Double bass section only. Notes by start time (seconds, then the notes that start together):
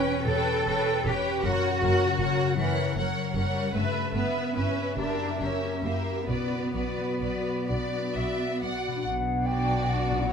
0.27 E1
0.67 E1
1.06 E1
1.44 F#1
1.83 F#1
2.20 F#1
2.58 F#1
2.96 F#1
3.35 F#1
3.74 G1
4.14 G1
4.56 G1
4.97 F#1
5.40 F#1
5.84 F#1
6.28 B1
6.74 B1
7.21 B1
7.69 B1
8.16 B1
8.62 B1
9.05 B1
10.29 A#1